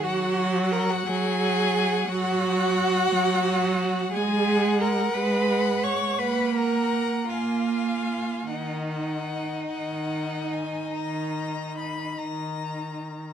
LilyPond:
<<
  \new Staff \with { instrumentName = "Violin" } { \time 12/8 \key ees \minor \tempo 4. = 56 ges''4 bes''16 ges''16 aes''4. ges''2. | aes''4 bes''8 ces'''4 des'''8 ces'''8 bes''4 f''4. | ees''1~ ees''4. r8 | }
  \new Staff \with { instrumentName = "Violin" } { \time 12/8 \key ees \minor ges''8 ges''4. ges''4. ges''4. ges''4 | r8 ges''4. ges''4 ges''8 ges''4 aes''8 aes''4 | ges''8 ges''4 ges''4 aes''8 bes''4 ces'''8 bes''4. | }
  \new Staff \with { instrumentName = "Cello" } { \time 12/8 \key ees \minor ges'4 bes'16 ges'16 aes'4. ges'2. | aes'4 bes'8 ces''4 des''8 ces''8 bes'4 f'4. | ees'1~ ees'4. r8 | }
  \new Staff \with { instrumentName = "Viola" } { \clef bass \time 12/8 \key ees \minor ges4. ges4. ges4. ges4. | aes4. aes4. bes4. bes4. | ees4. ees4. ees4. ees4. | }
>>